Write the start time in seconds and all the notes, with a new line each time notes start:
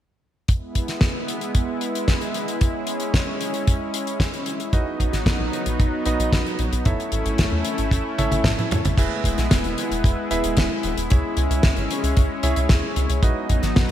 0.48 G#3 B3 E4, kick, closed hi-hat
0.75 kick, closed hi-hat
0.88 snare, closed hi-hat
1.01 kick, snare, closed hi-hat
1.28 closed hi-hat
1.41 closed hi-hat
1.55 kick, closed hi-hat
1.81 closed hi-hat
1.95 closed hi-hat
2.08 kick, snare, closed hi-hat
2.21 closed hi-hat
2.34 closed hi-hat
2.48 closed hi-hat
2.61 C#4, kick, closed hi-hat
2.87 closed hi-hat
3.00 closed hi-hat
3.14 kick, snare, closed hi-hat
3.41 closed hi-hat
3.54 closed hi-hat
3.67 kick, closed hi-hat
3.94 closed hi-hat
4.07 closed hi-hat
4.20 kick, snare, closed hi-hat
4.34 closed hi-hat
4.46 closed hi-hat
4.60 closed hi-hat
4.73 B1 F#3 B3 D#4 F#4 B4 D#5, kick, closed hi-hat
5.00 B1, kick, closed hi-hat
5.13 A1, snare, closed hi-hat
5.26 B1, kick, snare, closed hi-hat
5.40 B1
5.53 closed hi-hat
5.66 B1, closed hi-hat
5.80 B1, kick, closed hi-hat
6.06 B1 D#4 F#4 B4 D#5, closed hi-hat
6.19 B1, closed hi-hat
6.33 B1, kick, snare, closed hi-hat
6.46 closed hi-hat
6.59 B1, closed hi-hat
6.72 B1, closed hi-hat
6.85 A1 A3 C#4 E4 A4 C#5 E5, kick, closed hi-hat
7.00 closed hi-hat
7.12 A1, closed hi-hat
7.25 A1, closed hi-hat
7.38 A1, kick, snare, closed hi-hat
7.52 E2
7.65 closed hi-hat
7.78 A1, closed hi-hat
7.91 A1, kick, closed hi-hat
8.18 A1 E4 A4 C#5 E5, closed hi-hat, high tom
8.32 A1, closed hi-hat, high tom
8.44 A1, kick, snare, closed hi-hat, mid tom
8.59 closed hi-hat, mid tom
8.71 A2, closed hi-hat, mid tom
8.85 A1, closed hi-hat, mid tom
8.98 E1 G#3 B3 E4 G#4 B4 E5, kick, closed hi-hat, crash
9.24 E1, kick, closed hi-hat
9.38 B1, snare, closed hi-hat
9.51 E1, kick, snare, closed hi-hat
9.64 E1, closed hi-hat
9.78 closed hi-hat
9.91 E1, closed hi-hat
10.04 E1, kick, closed hi-hat
10.31 E1 E4 G#4 B4 E5, closed hi-hat
10.44 E1, closed hi-hat
10.57 E1, kick, snare, closed hi-hat
10.83 E1, closed hi-hat
10.97 E1, closed hi-hat
11.10 C#2 G#3 C#4 E4 G#4 C#5 E5, kick, closed hi-hat
11.37 C#2, closed hi-hat
11.50 C#2, closed hi-hat
11.63 C#2, kick, snare, closed hi-hat
11.77 G#1, closed hi-hat
11.91 closed hi-hat
12.03 C#2, closed hi-hat
12.17 C#2, kick, closed hi-hat
12.43 C#2 E4 G#4 C#5 E5, closed hi-hat
12.56 C#2, closed hi-hat
12.69 C#2, kick, snare, closed hi-hat
12.96 C#2, closed hi-hat
13.10 C#2, closed hi-hat
13.23 B1 F#3 B3 D#4 F#4 B4 D#5, kick, closed hi-hat
13.49 B1, kick, closed hi-hat
13.63 A1, snare, closed hi-hat
13.76 B1, kick, snare, closed hi-hat